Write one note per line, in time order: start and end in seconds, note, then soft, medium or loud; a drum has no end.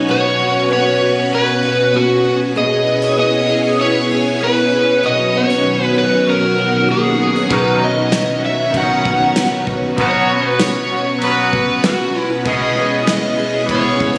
0.00 2.59 F#3 medium
0.00 0.39 C#4 medium
0.00 2.52 C#4 medium
0.00 0.15 D#4 medium
0.00 2.52 F#4 medium
0.08 2.53 B2 medium
0.08 2.54 B2 medium
0.08 1.00 F#4 medium
0.08 2.53 B4 loud
0.08 0.72 C#5 medium
0.39 1.31 C#4 medium
0.70 1.93 B3 medium
0.70 1.35 C#5 medium
1.01 1.62 F#4 medium
1.32 2.24 C#4 medium
1.32 1.97 B4 medium
1.63 2.56 F#4 medium
1.94 2.86 B3 medium
1.94 2.38 F#4 medium
2.25 2.86 C#4 medium
2.55 5.02 B2 medium
2.55 5.01 B3 medium
2.55 7.47 C#4 medium
2.55 5.01 E4 medium
2.55 5.01 G#4 medium
2.55 3.47 G#4 medium
2.55 5.01 C#5 medium
2.55 3.18 D#5 loud
2.86 3.02 B3 medium
3.02 3.78 C#4 medium
3.17 4.40 B3 medium
3.17 3.82 D#5 medium
3.48 4.09 G#4 medium
3.79 4.72 C#4 medium
3.79 4.43 C#5 medium
4.10 5.09 G#4 medium
4.41 5.09 B3 medium
4.41 5.06 B4 loud
4.72 5.03 C#4 medium
5.03 7.48 B2 medium
5.03 7.50 B2 medium
5.03 9.94 D#3 medium
5.03 7.48 F#3 medium
5.03 12.42 F#4 medium
5.03 5.96 F#4 medium
5.03 7.48 C#5 medium
5.03 5.36 D#5 loud
5.34 5.50 B3 medium
5.34 5.85 C#5 loud
5.50 6.26 C#4 medium
5.85 5.98 B4 loud
5.96 6.58 F#4 medium
5.96 6.29 B4 medium
6.27 7.19 C#4 medium
6.27 6.91 A#4 medium
6.58 7.51 F#4 medium
6.89 7.57 A#3 medium
6.89 7.54 G#4 medium
7.20 7.36 B3 medium
7.36 7.57 C#4 medium
7.49 7.81 B2 medium
7.49 9.97 B2 medium
7.49 7.82 D#3 medium
7.49 7.82 F#3 medium
7.49 9.96 B3 medium
7.49 9.95 C#4 medium
7.49 7.82 C#4 medium
7.49 8.43 F#4 medium
7.49 7.83 B4 loud
7.49 9.96 C#5 loud
7.49 kick loud
7.49 ride medium
7.53 7.83 D#4 medium
7.82 8.75 F#3 soft
7.82 8.74 C#4 medium
7.82 8.79 C#4 medium
7.82 8.45 D#5 loud
8.12 9.36 B3 medium
8.12 snare loud
8.12 ride medium
8.12 tambourine medium
8.44 9.05 F#4 medium
8.44 8.76 E5 loud
8.71 9.96 D#3 medium
8.71 9.67 C#4 medium
8.71 kick medium
8.71 ride medium
8.76 9.97 F#3 medium
8.76 9.65 F#5 loud
8.80 9.98 C#4 medium
8.80 9.99 D#4 medium
9.05 9.99 F#4 medium
9.05 kick medium
9.36 10.32 B3 medium
9.36 snare loud
9.36 ride medium
9.36 tambourine medium
9.67 10.29 C#4 medium
9.67 kick loud
9.97 10.28 B2 medium
9.97 14.18 B2 medium
9.97 12.44 B2 medium
9.97 10.29 F#3 medium
9.97 10.29 B3 medium
9.97 14.18 C#4 medium
9.97 10.29 C#4 loud
9.97 10.90 F#4 medium
9.97 10.26 F#4 medium
9.97 14.18 B4 medium
9.97 kick loud
9.97 ride medium
10.01 10.49 C#5 loud
10.27 11.22 C#4 medium
10.27 11.26 C#4 medium
10.27 11.21 F#4 medium
10.33 11.23 B3 soft
10.49 10.61 B4 loud
10.59 11.84 B3 medium
10.59 11.25 C#5 loud
10.59 snare loud
10.59 ride medium
10.59 tambourine medium
10.91 11.52 F#4 medium
11.18 12.44 F#3 medium
11.18 12.14 C#4 medium
11.18 ride medium
11.23 12.47 B3 medium
11.23 11.86 B4 loud
11.27 12.47 C#4 medium
11.27 12.48 F#4 medium
11.53 12.46 F#4 medium
11.53 kick loud
11.84 12.80 B3 medium
11.84 12.28 F#4 loud
11.84 snare loud
11.84 ride medium
11.84 tambourine medium
12.15 12.76 C#4 medium
12.45 12.76 B2 medium
12.45 14.18 B2 medium
12.45 12.77 E3 loud
12.45 14.18 G#3 medium
12.45 14.18 B3 medium
12.45 12.77 B3 medium
12.45 12.77 C#4 medium
12.45 14.18 E4 medium
12.45 13.37 G#4 medium
12.45 13.08 D#5 loud
12.45 kick loud
12.45 ride medium
12.49 12.74 G#4 loud
12.75 13.68 C#4 medium
12.75 13.70 C#4 medium
12.75 13.69 G#4 medium
12.81 13.70 B3 soft
13.07 14.18 B3 medium
13.07 13.66 D#5 loud
13.07 snare loud
13.07 ride medium
13.07 tambourine medium
13.38 14.00 G#4 medium
13.66 14.18 E3 medium
13.66 14.18 C#4 medium
13.66 kick medium
13.66 ride medium
13.71 14.18 B3 medium
13.71 14.18 C#4 medium
13.71 14.18 C#5 medium
13.79 14.18 G#4 medium
14.00 14.16 F#4 medium
14.00 kick medium